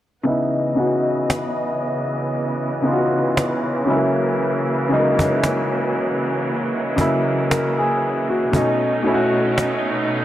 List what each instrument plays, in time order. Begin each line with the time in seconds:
0.23 grand piano C#3 B3 D#4, string section C#3 E3 B3 D#5
0.28 grand piano E4
0.75 grand piano C#3 B3 D#4
0.80 grand piano F#4
1.30 cajon slap
2.82 grand piano C#3 B3 D#4
2.87 grand piano F4
2.93 grand piano F#4
3.37 cajon slap
3.86 grand piano C#3 F#3 G#3, string section F#3 A#3
3.90 grand piano E4
3.95 grand piano A#3
4.89 grand piano C#3 F#3 G#3
4.94 grand piano D#4
4.99 grand piano A#3
5.19 cajon bass
5.44 cajon slap
6.96 grand piano C#3 F#3 A#3, cajon bass
7.01 grand piano E4
7.50 grand piano A#4, cajon slap
7.78 grand piano G#4
8.30 grand piano F#4
8.52 grand piano B2 A3 C#4, string section B2 A3 C#4 D#4, cajon bass
8.56 grand piano D#4
9.03 grand piano B2 A3 C#4
9.08 grand piano E4
9.14 grand piano F#4
9.58 cajon slap